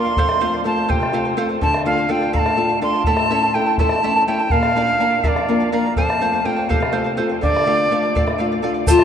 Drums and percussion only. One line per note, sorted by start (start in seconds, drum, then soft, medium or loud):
0.17 bombo low medium
0.29 bombo rim medium
0.54 bombo rim soft
0.90 bombo low medium
1.03 bombo rim soft
1.62 bombo low medium
1.74 bombo rim medium
1.86 bombo rim soft
2.34 bombo low medium
2.46 bombo rim medium
2.59 bombo rim soft
2.70 bombo rim soft
2.82 bombo rim soft
2.94 bombo rim soft
3.04 bombo low medium
3.17 bombo rim medium
3.41 bombo rim soft
3.78 bombo low medium
3.89 bombo rim medium
4.50 bombo low medium
4.63 bombo rim medium
4.88 bombo rim soft
5.24 bombo low medium
5.36 bombo rim soft
5.96 bombo low medium
6.10 bombo rim medium
6.33 bombo rim soft
6.71 bombo low medium
6.83 bombo rim medium
7.43 bombo rim soft
7.43 bombo low medium
7.56 bombo rim medium
7.80 bombo rim soft
7.93 bombo rim soft
8.16 bombo rim soft
8.16 bombo low medium
8.28 bombo rim medium
8.75 bombo rim soft
8.87 bombo rim soft
8.87 bombo low medium
8.87 shaker medium
8.99 bombo rim medium